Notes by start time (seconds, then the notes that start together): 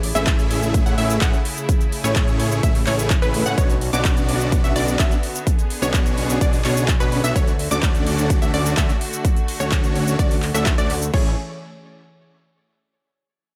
Already playing: A1 C#3 A3 E4 G#4
0.03 open hi-hat
0.15 A1 A3 C#4 E4 G#4 E5, cabasa
0.27 kick, clap, closed hi-hat, cabasa
0.39 closed hi-hat, cabasa
0.51 open hi-hat
0.62 closed hi-hat, cabasa
0.74 kick, closed hi-hat, cabasa
0.86 A1 A3 C#4 E4 G#4 F#5, closed hi-hat, cabasa
0.98 A1 A3 C#4 E4 G#4 E5, open hi-hat
1.10 closed hi-hat, cabasa
1.21 A1 A3 C#4 E4 G#4 F#5, kick, clap, closed hi-hat, cabasa
1.33 closed hi-hat, cabasa
1.45 open hi-hat
1.57 closed hi-hat, cabasa
1.69 kick, closed hi-hat, cabasa
1.81 closed hi-hat, cabasa
1.92 open hi-hat
2.04 A1 A3 C#4 E4 G#4 C#5, closed hi-hat, cabasa
2.16 kick, clap, closed hi-hat, cabasa
2.28 closed hi-hat, cabasa
2.40 open hi-hat
2.51 closed hi-hat, cabasa
2.63 A1 A3 C#4 E4 G#4 E5, kick, closed hi-hat, cabasa
2.75 open hi-hat, cabasa
2.87 A1 A3 C#4 E4 G#4 C#5, clap, open hi-hat
2.99 closed hi-hat, cabasa
3.10 kick, clap, closed hi-hat, cabasa
3.22 A1 A3 C#4 E4 G#4 B4, closed hi-hat, cabasa
3.34 open hi-hat
3.46 A2 A3 C#4 E4 G#4 F#5, closed hi-hat, cabasa
3.58 B1 D3 B3 C#4 D4 F#4 C#5, kick, closed hi-hat, cabasa
3.70 closed hi-hat, cabasa
3.81 open hi-hat
3.93 B1 B3 C#4 D4 F#4 D5 D6, closed hi-hat, cabasa
4.05 kick, clap, closed hi-hat, cabasa
4.17 closed hi-hat, cabasa
4.29 open hi-hat
4.40 closed hi-hat, cabasa
4.52 kick, closed hi-hat, cabasa
4.64 B1 B3 C#4 D4 F#4 E5, closed hi-hat, cabasa
4.76 B1 B3 C#4 D4 F#4 D5, open hi-hat
4.88 closed hi-hat, cabasa
4.99 B1 B3 C#4 D4 F#4 E5, kick, clap, closed hi-hat, cabasa
5.11 closed hi-hat, cabasa
5.23 open hi-hat
5.35 closed hi-hat, cabasa
5.47 G#4, kick, closed hi-hat, cabasa
5.59 closed hi-hat, cabasa
5.70 open hi-hat
5.82 B1 B3 C#4 D4 F#4 C#5, cabasa
5.94 kick, clap, closed hi-hat, cabasa
6.06 closed hi-hat, cabasa
6.18 open hi-hat
6.29 closed hi-hat, cabasa
6.41 B1 B3 C#4 D4 F#4 D5, kick, closed hi-hat, cabasa
6.53 open hi-hat, cabasa
6.65 B1 B3 C#4 D4 F#4 C#5, clap, open hi-hat
6.77 closed hi-hat, cabasa
6.88 kick, clap, closed hi-hat, cabasa
7.00 B1 B3 C#4 D4 F#4 B4, closed hi-hat, cabasa
7.12 open hi-hat
7.24 B1 B3 C#4 D4 F#4 E5, closed hi-hat, cabasa
7.36 D2 A3 C#4 D4 F#4 C#5, kick, closed hi-hat, cabasa
7.47 closed hi-hat, cabasa
7.59 open hi-hat
7.71 D2 A3 C#4 D4 F#4 D5 D6, cabasa
7.83 kick, clap, closed hi-hat, cabasa
7.95 closed hi-hat, cabasa
8.07 open hi-hat
8.18 closed hi-hat, cabasa
8.30 kick, closed hi-hat, cabasa
8.42 D2 A3 C#4 D4 F#4 E5, closed hi-hat, cabasa
8.54 D2 A3 C#4 D4 F#4 D5, open hi-hat
8.66 closed hi-hat, cabasa
8.77 D2 A3 C#4 D4 F#4 E5, kick, clap, closed hi-hat, cabasa
8.89 closed hi-hat, cabasa
9.01 open hi-hat
9.13 closed hi-hat, cabasa
9.25 kick, closed hi-hat, cabasa
9.36 closed hi-hat, cabasa
9.48 open hi-hat
9.60 D2 A3 C#4 D4 F#4 C#5, cabasa
9.72 kick, clap, closed hi-hat, cabasa
9.84 closed hi-hat, cabasa
9.95 open hi-hat
10.07 closed hi-hat, cabasa
10.19 D2 A3 C#4 D4 F#4 D5, kick, closed hi-hat, cabasa
10.31 open hi-hat, cabasa
10.42 clap, open hi-hat
10.54 D2 A3 C#4 D4 F#4 E5, closed hi-hat, cabasa
10.66 kick, clap, closed hi-hat, cabasa
10.78 D2 A3 C#4 D4 F#4 D5, closed hi-hat, cabasa
10.90 open hi-hat
11.02 closed hi-hat, cabasa
11.14 A1 E3 A3 C#4 E4 G#4 C#5, kick, crash